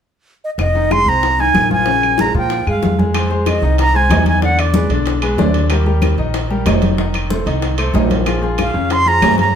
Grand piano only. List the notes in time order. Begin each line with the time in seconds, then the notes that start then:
0.75 D#3 D#4
0.91 G#3 G#4
1.08 C4 C5
1.39 D#3 D#4
1.71 F3 F4
1.87 C#3 C#4
2.19 G#3 G#4
2.35 F3 F4
2.67 G#3 G#4
2.98 G#3 G#4
3.14 G#3 G#4 C5
3.30 G#3 G#4 C5
3.62 D#3 D#4 D#5
3.94 G#3 G#4 C5
4.10 D#3 D#4 D#5
4.43 D3 D4 D5
4.75 G#3 G#4 B4
4.91 D3 D4 D5
5.22 G#3 G#4 B4
5.38 D3 D4 D5
5.70 G3 G4 A#4
5.86 G3 G4 A#4
6.18 D#3 D#4 D#5
6.50 G3 G4 A#4
6.66 D#3 D#4 D#5
6.99 D#3 D#4 D#5
7.30 A3 A4 C5
7.46 D#3 D#4 D#5
7.78 A3 A4 C5
7.94 D#3 D#4 D#5
8.26 F3 F4 G#4
8.42 F3 F4 G#4
8.74 C#3 C#4 C#5
9.06 F3 F4 G#4
9.22 C#3 C#4 C#5